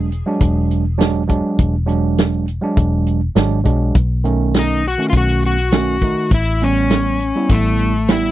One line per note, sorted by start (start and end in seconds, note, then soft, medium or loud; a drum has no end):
0.00 0.22 E1 loud
0.12 closed hi-hat medium
0.26 0.83 F#3 medium
0.26 0.83 G#3 medium
0.26 0.84 D4 loud
0.41 1.41 E1 medium
0.41 kick medium
0.41 closed hi-hat medium
0.71 closed hi-hat medium
0.98 1.22 F#3 medium
0.98 1.22 G#3 medium
0.98 1.23 D4 loud
0.98 snare loud
0.98 closed hi-hat medium
1.27 1.74 F#3 medium
1.27 1.75 G#3 medium
1.27 1.75 D4 medium
1.27 kick medium
1.27 closed hi-hat medium
1.59 2.59 E1 loud
1.59 kick loud
1.59 closed hi-hat medium
1.86 2.45 F#3 medium
1.86 2.45 G#3 medium
1.86 2.45 D4 medium
1.86 closed hi-hat medium
2.18 snare loud
2.18 closed hi-hat medium
2.48 closed hi-hat medium
2.61 3.19 F#3 medium
2.61 3.19 G#3 medium
2.61 3.20 D4 medium
2.77 3.27 E1 medium
2.77 kick medium
2.77 closed hi-hat medium
3.07 closed hi-hat medium
3.35 3.63 G#1 medium
3.35 3.59 F#3 medium
3.35 3.59 G#3 medium
3.35 3.60 D4 loud
3.35 snare loud
3.35 closed hi-hat medium
3.64 3.92 B1 medium
3.64 3.95 F#3 medium
3.64 3.95 G#3 medium
3.64 3.95 D4 medium
3.64 kick medium
3.64 closed hi-hat medium
3.95 4.95 B1 loud
3.95 kick loud
3.95 closed hi-hat medium
4.24 4.82 D#3 medium
4.24 4.82 A3 medium
4.24 4.82 C#4 medium
4.24 closed hi-hat medium
4.54 snare loud
4.54 closed hi-hat medium
4.59 4.84 D#4 medium
4.84 5.07 F#4 loud
4.84 closed hi-hat medium
4.98 5.55 D#3 medium
4.98 5.56 A3 medium
4.98 5.56 C#4 medium
5.10 6.13 B1 medium
5.10 5.15 F4 medium
5.10 kick medium
5.10 closed hi-hat medium
5.17 5.45 F#4 loud
5.43 6.34 F#4 loud
5.43 closed hi-hat medium
5.72 5.96 D#3 medium
5.72 5.96 A3 medium
5.72 5.97 C#4 medium
5.72 snare loud
5.72 closed hi-hat medium
6.02 6.32 D#3 medium
6.02 6.32 A3 medium
6.02 6.32 D#4 medium
6.02 kick medium
6.02 closed hi-hat medium
6.31 7.31 A1 loud
6.31 6.63 E4 loud
6.31 kick loud
6.31 closed hi-hat medium
6.61 7.18 G3 medium
6.61 7.18 B3 medium
6.61 7.19 C#4 medium
6.61 7.54 C#4 medium
6.61 closed hi-hat medium
6.90 snare loud
6.90 closed hi-hat medium
7.20 closed hi-hat medium
7.36 7.92 G3 medium
7.36 7.92 B3 medium
7.36 7.93 E4 medium
7.50 8.31 A1 medium
7.50 8.11 A3 medium
7.50 kick medium
7.50 closed hi-hat medium
7.79 closed hi-hat medium
8.08 8.31 G3 medium
8.08 8.31 B3 medium
8.08 8.31 E4 medium
8.08 snare loud
8.08 closed hi-hat medium